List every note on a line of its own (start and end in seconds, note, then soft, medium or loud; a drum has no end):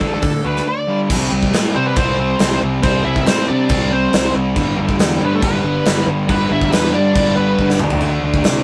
0.00 0.16 A1 medium
0.00 0.21 D3 medium
0.00 0.22 A3 medium
0.00 0.22 D4 medium
0.00 0.13 A4 medium
0.00 kick medium
0.14 0.18 A4 medium
0.22 0.42 D3 medium
0.22 0.37 D3 medium
0.22 0.42 A3 medium
0.22 0.44 A4 medium
0.22 kick loud
0.22 open hi-hat medium
0.45 0.59 D2 medium
0.45 0.65 D3 medium
0.45 0.65 A3 medium
0.45 0.66 D4 medium
0.45 0.66 B4 medium
0.56 snare soft
0.67 0.86 D3 medium
0.67 0.86 A3 medium
0.67 0.97 D5 medium
0.87 1.08 G2 medium
0.87 1.09 D3 medium
0.87 1.09 G3 medium
1.10 1.28 C2 medium
1.10 1.30 C3 loud
1.10 1.31 G3 loud
1.10 1.32 C4 loud
1.10 kick loud
1.10 crash loud
1.10 crash medium
1.31 1.50 C2 medium
1.31 1.53 C3 medium
1.31 1.54 G3 medium
1.31 1.54 C4 loud
1.43 kick medium
1.53 1.72 A2 medium
1.53 1.75 C3 medium
1.53 1.75 G3 medium
1.53 1.76 C4 medium
1.53 snare loud
1.53 crash medium
1.75 1.93 C3 medium
1.75 1.96 C3 medium
1.75 1.98 G3 medium
1.75 1.86 C4 medium
1.75 1.97 C4 loud
1.75 1.86 C5 loud
1.87 1.96 B3 medium
1.87 1.97 B4 loud
1.96 2.33 C2 medium
1.96 2.18 C3 loud
1.96 2.19 G3 medium
1.96 2.58 C4 medium
1.96 2.20 C4 medium
1.96 2.58 C5 medium
1.96 kick loud
1.96 crash medium
2.19 2.39 C3 medium
2.19 2.41 G3 medium
2.19 2.40 C4 medium
2.39 2.59 C2 medium
2.39 2.60 C3 medium
2.39 2.61 G3 medium
2.39 2.61 C4 loud
2.39 snare loud
2.39 crash medium
2.62 2.80 C2 medium
2.62 2.82 C3 medium
2.62 2.83 G3 medium
2.62 2.83 C4 medium
2.83 3.01 C2 loud
2.83 3.03 C3 loud
2.83 3.05 G3 loud
2.83 3.03 C4 medium
2.83 3.05 C4 loud
2.83 3.05 C5 medium
2.83 kick loud
2.83 crash medium
3.04 3.23 C2 medium
3.04 3.26 C3 medium
3.04 3.27 G3 loud
3.04 3.27 C4 loud
3.04 3.25 E4 medium
3.04 3.27 E5 loud
3.16 kick medium
3.26 3.45 A2 medium
3.26 3.48 C3 medium
3.26 3.49 G3 medium
3.26 3.47 C4 medium
3.26 3.48 C4 medium
3.26 3.49 C5 medium
3.26 snare loud
3.26 crash medium
3.48 3.69 C3 medium
3.48 3.67 C3 medium
3.48 3.70 G3 loud
3.48 3.70 C4 loud
3.48 3.88 D4 medium
3.48 3.92 D5 loud
3.69 4.06 C2 loud
3.69 3.89 C3 medium
3.69 3.91 G3 loud
3.69 3.91 C4 loud
3.69 kick loud
3.69 crash medium
3.91 4.11 C3 medium
3.91 4.12 G3 medium
3.91 4.12 C4 loud
3.91 4.32 C4 medium
3.91 4.32 C5 medium
4.12 4.32 C2 medium
4.12 4.33 C3 medium
4.12 4.35 G3 medium
4.12 4.34 C4 loud
4.12 snare loud
4.12 crash medium
4.34 4.53 C2 medium
4.34 4.55 C3 medium
4.34 4.57 G3 medium
4.34 4.55 C4 medium
4.56 4.74 G1 loud
4.56 4.77 G2 medium
4.56 4.77 D3 loud
4.56 4.79 G3 loud
4.56 kick loud
4.56 crash medium
4.78 4.97 G1 loud
4.78 4.99 G2 medium
4.78 4.99 D3 medium
4.78 5.00 G3 medium
4.89 kick medium
4.99 5.18 E2 medium
4.99 5.21 G2 medium
4.99 5.21 D3 medium
4.99 5.22 G3 loud
4.99 snare loud
4.99 crash medium
5.21 5.39 G2 loud
5.21 5.40 G2 medium
5.21 5.41 D3 loud
5.21 5.42 G3 loud
5.21 5.33 B3 medium
5.25 5.34 B4 medium
5.34 5.43 A3 medium
5.34 5.44 A4 loud
5.41 5.79 G1 medium
5.41 5.62 G2 medium
5.41 5.63 D3 medium
5.41 5.64 G3 loud
5.41 6.04 B3 medium
5.41 6.04 B4 loud
5.41 kick loud
5.41 crash medium
5.63 5.86 G2 medium
5.63 5.86 D3 loud
5.63 5.86 G3 medium
5.85 6.04 G1 medium
5.85 6.06 G2 medium
5.85 6.06 D3 medium
5.85 6.07 G3 medium
5.85 snare loud
5.85 crash medium
6.07 6.25 G1 loud
6.07 6.28 G2 medium
6.07 6.29 D3 medium
6.07 6.29 G3 loud
6.28 6.47 G1 medium
6.28 6.50 G2 loud
6.28 6.50 D3 loud
6.28 6.50 G3 loud
6.28 6.49 B3 medium
6.28 6.52 B4 medium
6.28 kick loud
6.28 crash medium
6.50 6.69 G1 medium
6.50 6.71 G2 medium
6.50 6.71 D3 medium
6.50 6.72 G3 medium
6.50 6.70 E4 medium
6.50 6.73 E5 loud
6.61 kick medium
6.71 6.90 E2 medium
6.71 6.93 G2 medium
6.71 6.93 D3 medium
6.71 6.94 G3 loud
6.71 6.92 B3 medium
6.71 6.95 B4 loud
6.71 snare loud
6.71 crash medium
6.91 7.13 G2 medium
6.91 7.12 G2 medium
6.91 7.14 D3 medium
6.91 7.32 D4 medium
6.91 7.34 D5 medium
6.95 7.15 G3 loud
7.15 7.52 G1 medium
7.15 7.36 G2 medium
7.15 7.36 D3 medium
7.15 7.37 G3 loud
7.15 kick loud
7.15 crash medium
7.36 7.56 G2 medium
7.36 7.58 D3 medium
7.36 7.58 G3 medium
7.36 7.77 B3 medium
7.36 7.76 B4 medium
7.58 7.77 G1 loud
7.58 7.78 G2 medium
7.58 7.79 D3 loud
7.58 7.79 G3 medium
7.58 kick medium
7.70 snare medium
7.79 7.98 D2 medium
7.79 8.02 D3 loud
7.79 8.02 A3 medium
7.79 8.03 D4 loud
7.79 mid tom loud
7.90 floor tom loud
8.01 8.19 D2 medium
8.01 8.23 D3 loud
8.01 8.23 A3 loud
8.01 8.24 D4 loud
8.01 crash medium
8.23 8.41 D2 medium
8.23 8.45 D3 medium
8.23 8.46 A3 loud
8.23 8.47 D4 medium
8.34 kick medium
8.44 8.63 C3 medium
8.44 8.63 D3 medium
8.44 8.63 A3 medium
8.44 8.63 D4 medium
8.44 snare loud
8.44 crash medium